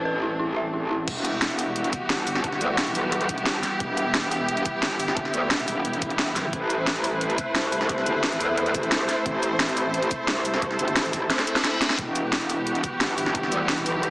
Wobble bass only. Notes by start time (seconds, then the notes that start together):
Already playing: A1
1.08 E1
2.10 G1
2.61 D2
2.78 E1
2.95 B1
3.29 E1
3.46 G1
3.80 E1
4.83 G1
5.34 D2
5.51 E1
5.68 E1
6.02 E1
6.53 A1
7.55 C2
8.06 G1
8.23 A1
8.41 E2
8.75 A1
8.92 C2
9.26 A1
10.28 C2
10.79 G1
10.96 A1
11.13 A1
11.99 E1
13.01 G1
13.52 D2
13.69 E1
13.86 B1